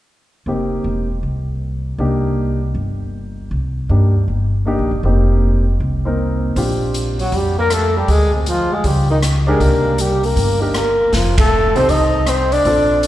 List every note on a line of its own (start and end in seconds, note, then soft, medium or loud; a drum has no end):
0.46 0.82 F1 medium
0.46 1.05 A#3 soft
0.46 1.05 C4 soft
0.46 1.05 D#4 soft
0.46 1.06 G4 medium
0.84 1.20 E1 medium
1.23 1.95 C2 medium
1.98 2.71 C2 medium
1.98 2.57 A#3 medium
1.98 2.57 D4 soft
1.98 2.58 D#4 soft
1.98 2.58 G4 medium
2.75 3.47 G1 medium
3.51 3.87 C2 medium
3.89 4.25 G2 medium
3.89 4.12 A#3 soft
3.89 4.12 D4 soft
3.89 4.12 D#4 soft
3.89 4.13 G4 soft
4.28 4.75 G1 medium
4.65 4.88 A#3 soft
4.65 4.89 D4 soft
4.65 4.89 D#4 medium
4.65 4.89 G4 medium
4.79 4.90 A#1 medium
4.91 5.03 E1 medium
5.03 5.76 F1 medium
5.03 5.62 A#3 medium
5.03 5.62 C4 medium
5.03 5.63 D#4 soft
5.03 5.63 G4 medium
5.80 6.52 C2 medium
6.05 6.54 A#3 soft
6.05 6.54 C4 soft
6.05 6.54 D#4 soft
6.05 6.54 A#4 medium
6.56 7.28 A#1 medium
6.56 7.14 C4 soft
6.56 7.15 D4 soft
6.56 7.15 F4 soft
6.56 7.15 G4 medium
6.56 kick soft
6.56 open hi-hat soft
6.94 closed hi-hat soft
7.19 7.35 F#3 medium
7.19 7.38 F#4 medium
7.19 open hi-hat soft
7.32 8.04 F2 medium
7.32 7.58 G3 medium
7.32 kick soft
7.32 open hi-hat soft
7.36 7.59 G4 medium
7.59 7.72 A#3 medium
7.59 7.75 A#4 loud
7.70 7.96 A3 medium
7.70 7.97 A4 medium
7.70 cross-stick soft
7.70 closed hi-hat soft
7.97 8.12 G3 medium
7.97 8.13 G4 medium
8.08 8.80 D2 medium
8.08 8.33 G#3 medium
8.08 8.35 G#4 medium
8.08 kick soft
8.08 open hi-hat soft
8.34 8.49 C3 soft
8.34 8.51 C4 soft
8.46 8.73 F3 medium
8.46 8.76 F4 medium
8.46 closed hi-hat soft
8.72 8.87 G#3 medium
8.72 8.89 G#4 medium
8.84 9.57 C#2 medium
8.84 9.10 G3 medium
8.84 9.11 G4 medium
8.84 kick soft
8.84 open hi-hat soft
9.10 9.22 D#3 medium
9.10 9.19 D#4 medium
9.23 cross-stick medium
9.23 closed hi-hat soft
9.47 9.63 G#3 medium
9.47 9.96 D4 medium
9.47 9.96 D#4 medium
9.47 9.96 G4 medium
9.47 9.64 G#4 medium
9.47 9.96 A#4 medium
9.60 10.33 C2 medium
9.60 10.02 A#3 medium
9.60 10.03 A#4 medium
9.60 kick soft
9.60 open hi-hat soft
9.98 10.26 G3 medium
9.98 10.27 G4 medium
9.98 closed hi-hat soft
10.23 10.62 A#3 medium
10.23 10.62 A#4 medium
10.23 open hi-hat soft
10.36 11.09 G1 medium
10.36 kick soft
10.36 open hi-hat soft
10.60 10.78 G3 soft
10.60 10.73 D4 medium
10.60 10.73 D#4 medium
10.60 10.73 G4 medium
10.60 10.78 G4 soft
10.60 10.74 A#4 medium
10.74 11.16 A#3 medium
10.74 11.16 A#4 medium
10.74 cross-stick medium
10.74 closed hi-hat soft
11.12 11.72 F1 medium
11.12 11.37 F3 soft
11.12 11.39 F4 medium
11.12 kick soft
11.12 snare soft
11.12 open hi-hat soft
11.38 11.75 A3 medium
11.38 11.78 A4 medium
11.38 kick medium
11.38 ride medium
11.75 11.88 C2 medium
11.75 11.87 C4 medium
11.75 11.91 C4 medium
11.75 11.87 D#4 medium
11.75 11.88 G4 medium
11.75 11.88 A4 medium
11.75 11.91 C5 medium
11.75 open hi-hat soft
11.89 12.61 C2 medium
11.89 12.29 D#4 medium
11.89 12.30 D#5 medium
11.89 kick soft
11.89 open hi-hat soft
12.27 12.54 C4 medium
12.27 12.55 C5 medium
12.27 cross-stick medium
12.27 closed hi-hat soft
12.52 13.03 D4 medium
12.52 13.04 D5 medium
12.52 open hi-hat soft
12.65 13.07 A#1 medium
12.65 13.07 C4 medium
12.65 13.07 D4 soft
12.65 13.07 F4 soft
12.65 13.07 A4 medium
12.65 kick soft
12.65 open hi-hat soft
13.03 closed hi-hat soft